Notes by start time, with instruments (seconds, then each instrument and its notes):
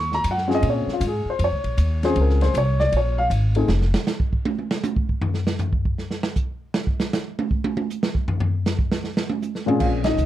Already playing: upright bass D#2, grand piano C#6
0.12 grand piano A#5, snare
0.24 upright bass F#2, kick, hi-hat pedal, ride
0.31 grand piano F#5
0.38 snare
0.48 grand piano C4 C#4 F4 G#4, snare
0.55 grand piano D#5
0.63 upright bass A#2, kick, ride
0.70 grand piano C#5
0.87 muted upright bass stroke, snare
0.93 grand piano F4
1.01 upright bass G#2, kick, hi-hat pedal, ride
1.07 grand piano G#4
1.25 muted upright bass stroke
1.30 grand piano C5
1.39 upright bass F2, kick, ride
1.44 grand piano C#5
1.51 upright bass C#2
1.64 upright bass A#1, ride
1.77 upright bass D#2, kick, hi-hat pedal, ride
2.03 grand piano C4 C#4 F4 G#4 C5, snare, ride
2.16 upright bass C#2, kick, ride
2.21 grand piano A#4
2.30 snare
2.41 grand piano C5, snare, ride
2.54 upright bass C2, grand piano C#5, kick, hi-hat pedal, ride
2.80 grand piano D5, snare
2.92 upright bass A#1, kick, ride
2.97 grand piano C#5
3.18 grand piano F5
3.30 upright bass G#1, kick, hi-hat pedal, ride
3.55 grand piano A3 C4 D#4 G#4, ride
3.68 upright bass F1, snare
3.81 snare
3.94 snare
4.07 snare, hi-hat pedal
4.20 kick
4.33 kick
4.45 high tom
4.59 high tom
4.71 snare
4.83 hi-hat pedal, high tom
4.96 kick
5.09 kick
5.22 floor tom
5.34 snare
5.47 snare
5.59 floor tom, hi-hat pedal
5.73 kick
5.85 kick
5.98 snare
6.11 snare
6.23 snare
6.36 kick, hi-hat pedal
6.74 snare
6.87 kick
7.00 snare
7.13 snare, hi-hat pedal
7.39 high tom
7.51 kick
7.64 high tom
7.77 high tom
7.90 hi-hat pedal
8.03 snare
8.15 kick
8.28 floor tom
8.40 floor tom
8.66 snare, hi-hat pedal
8.79 kick
8.92 snare
9.04 snare
9.17 snare
9.30 high tom
9.42 hi-hat pedal, high tom
9.55 snare
9.66 grand piano A#2 C4 C#4 F4 G#4, high tom
9.80 upright bass A#1, grand piano F4 F5, kick, crash
10.04 grand piano D#4 D#5, snare, ride
10.17 upright bass C#2, hi-hat pedal